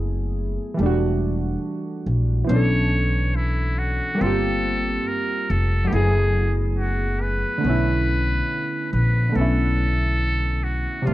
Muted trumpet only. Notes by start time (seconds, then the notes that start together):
2.49 C#5
3.36 E4
3.79 F#4
4.22 A4
5.07 A#4
5.50 A4
5.88 G4
5.93 G#4
6.78 F#4
7.21 B4
8.93 B4
9.36 A4
10.64 F#4
11.06 F4